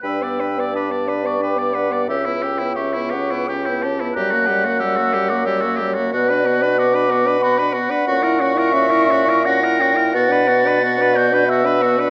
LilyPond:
<<
  \new Staff \with { instrumentName = "Flute" } { \time 3/4 \key b \minor \tempo 4 = 90 e'''4 d'''8. cis'''16 d'''4 | e'''4 cis'''4 g'''4 | fis'''4 e'''8. d'''16 e'''8. r16 | fis'''4 d'''4 b''8 r8 |
cis'''2 ais'''4 | a'''4. g'''8 e'''4 | }
  \new Staff \with { instrumentName = "Clarinet" } { \time 3/4 \key b \minor g''4 a''4 g''8 fis''8 | e''8 g''8 e''8 fis''8 g''8 a''8 | ais''8 fis''4. cis''4 | d''4. r8 fis''4~ |
fis''4 e''4 fis''8 g''8 | fis''4 fis''8 d''8 e''8 fis''8 | }
  \new Staff \with { instrumentName = "Oboe" } { \time 3/4 \key b \minor b'16 d''16 b'16 d''16 b'16 d''16 b'16 d''16 b'16 d''16 b'16 d''16 | g'16 e'16 g'16 e'16 g'16 e'16 g'16 e'16 g'16 e'16 g'16 e'16 | g'16 fis'16 g'16 fis'16 g'16 fis'16 g'16 fis'16 g'16 fis'16 g'16 fis'16 | fis'16 b'16 fis'16 b'16 fis'16 b'16 fis'16 b'16 fis'16 b'16 fis'16 b'16 |
fis'16 ais'16 fis'16 ais'16 fis'16 ais'16 fis'16 ais'16 fis'16 ais'16 fis'16 ais'16 | fis'16 b'16 fis'16 b'16 fis'16 b'16 fis'16 b'16 fis'16 b'16 fis'16 b'16 | }
  \new Staff \with { instrumentName = "French horn" } { \time 3/4 \key b \minor d'16 b16 d'16 b16 d'16 b16 d'16 b16 d'16 b16 d'16 b16 | cis'16 b16 cis'16 b16 cis'16 b16 cis'16 b16 cis'16 b16 cis'16 b16 | g16 ais16 g16 ais16 g16 ais16 g16 ais16 g16 ais16 g16 ais16 | b16 d'16 b16 d'16 b16 d'16 b16 d'16 b16 d'16 b16 d'16 |
cis'16 e'16 cis'16 e'16 cis'16 e'16 cis'16 e'16 cis'16 e'16 cis'16 e'16 | b16 d'16 b16 d'16 b16 d'16 b16 d'16 b16 d'16 b16 d'16 | }
  \new Staff \with { instrumentName = "Bassoon" } { \clef bass \time 3/4 \key b \minor g,2. | cis,2. | fis,2. | b,2~ b,8 r8 |
ais,2. | b,2. | }
>>